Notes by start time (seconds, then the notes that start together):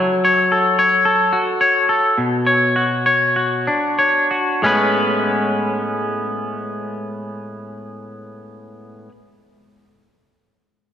Already playing: F#3 C#5
0.25 C#5
0.52 A4
0.79 C#5
1.05 A4
1.33 F#4
1.61 C#5
1.89 A4
2.18 B2
2.46 C#5
2.76 F#4
3.06 C#5
3.36 F#4
3.67 D4
3.99 C#5
4.31 F#4
4.62 A2 G#3 B3 C#4
4.66 B4